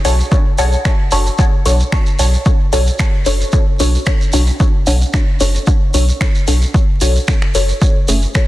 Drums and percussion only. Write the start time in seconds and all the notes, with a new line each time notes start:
0.05 open hi-hat, shekere
0.20 shekere
0.31 kick, shekere
0.58 open hi-hat, shekere
0.72 shekere
0.85 finger snap, kick, shekere
1.12 open hi-hat, shekere
1.26 shekere
1.39 kick, shekere
1.66 open hi-hat, shekere
1.80 shekere
1.92 finger snap, kick, shekere
2.06 shekere
2.19 open hi-hat, shekere
2.34 shekere
2.45 kick, shekere
2.73 open hi-hat, shekere
2.87 shekere
2.99 finger snap, kick, shekere
3.26 open hi-hat, shekere
3.41 shekere
3.52 kick, shekere
3.80 open hi-hat, shekere
3.95 shekere
4.06 finger snap, kick, shekere
4.21 shekere
4.33 open hi-hat, shekere
4.46 shekere
4.60 kick, shekere
4.87 open hi-hat, shekere
5.01 shekere
5.14 finger snap, kick, shekere
5.40 open hi-hat, shekere
5.55 shekere
5.67 kick, shekere
5.94 open hi-hat, shekere
6.08 shekere
6.21 finger snap, kick, shekere
6.35 shekere
6.48 open hi-hat, shekere
6.62 shekere
6.74 kick, shekere
7.01 open hi-hat, shekere
7.16 shekere
7.28 finger snap, kick, shekere
7.42 finger snap
7.55 open hi-hat, shekere
7.69 shekere
7.81 kick, shekere
8.08 open hi-hat, shekere
8.22 shekere
8.35 finger snap, kick, shekere